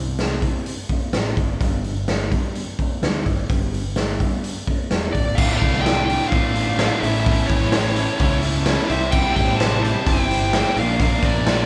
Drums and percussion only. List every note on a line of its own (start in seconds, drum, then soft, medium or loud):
0.19 snare medium
0.19 open hi-hat medium
0.42 kick medium
0.42 open hi-hat medium
0.66 open hi-hat medium
0.89 kick medium
0.89 open hi-hat medium
1.13 snare loud
1.13 open hi-hat medium
1.37 kick medium
1.37 open hi-hat soft
1.61 kick loud
1.61 open hi-hat medium
1.84 open hi-hat soft
2.08 snare loud
2.08 open hi-hat medium
2.32 kick medium
2.32 open hi-hat soft
2.55 open hi-hat medium
2.79 kick medium
2.79 open hi-hat soft
3.03 snare loud
3.03 open hi-hat medium
3.26 kick medium
3.26 open hi-hat soft
3.49 kick loud
3.49 open hi-hat medium
3.74 open hi-hat soft
3.96 snare loud
3.96 open hi-hat medium
4.20 kick medium
4.20 open hi-hat medium
4.44 open hi-hat medium
4.67 kick medium
4.67 open hi-hat medium
4.91 snare loud
4.91 open hi-hat medium
5.15 kick medium
5.15 open hi-hat soft
5.38 kick loud
5.38 crash loud
5.62 kick medium
5.62 open hi-hat medium
5.74 snare soft
5.86 snare loud
5.86 open hi-hat medium
6.10 open hi-hat medium
6.32 kick loud
6.32 open hi-hat medium
6.56 open hi-hat medium
6.79 snare loud
6.79 open hi-hat medium
7.03 open hi-hat medium
7.26 kick loud
7.26 open hi-hat medium
7.49 kick medium
7.49 open hi-hat medium
7.61 snare soft
7.72 snare loud
7.72 open hi-hat medium
7.96 open hi-hat medium
8.19 kick loud
8.19 open hi-hat medium
8.43 open hi-hat medium
8.66 snare loud
8.66 open hi-hat medium
8.90 open hi-hat medium
9.12 kick loud
9.12 crash loud
9.36 kick medium
9.36 open hi-hat medium
9.60 snare loud
9.60 open hi-hat medium
9.85 open hi-hat medium
10.07 kick loud
10.07 open hi-hat medium
10.31 open hi-hat medium
10.53 snare loud
10.53 open hi-hat medium
10.77 open hi-hat medium
11.00 kick loud
11.00 open hi-hat medium
11.22 kick medium
11.22 open hi-hat medium
11.47 snare loud
11.47 open hi-hat medium